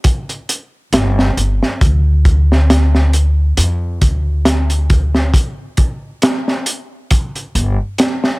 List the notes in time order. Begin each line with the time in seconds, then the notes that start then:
0.04 kick, closed hi-hat
0.29 closed hi-hat
0.49 closed hi-hat
0.93 G1, snare, closed hi-hat
1.19 snare
1.37 G1, closed hi-hat
1.63 snare
1.81 D2, kick, closed hi-hat
2.25 kick, closed hi-hat
2.52 snare
2.70 snare, closed hi-hat
2.95 snare
3.13 closed hi-hat
3.57 F2, closed hi-hat
4.01 D2, kick, closed hi-hat
4.45 snare, closed hi-hat
4.70 closed hi-hat
4.90 kick, closed hi-hat
5.15 snare
5.34 kick, closed hi-hat
5.77 kick, closed hi-hat
6.22 snare, closed hi-hat
6.48 snare
6.66 closed hi-hat
7.11 kick, closed hi-hat
7.35 closed hi-hat
7.55 G1, closed hi-hat
7.98 snare, closed hi-hat
8.24 snare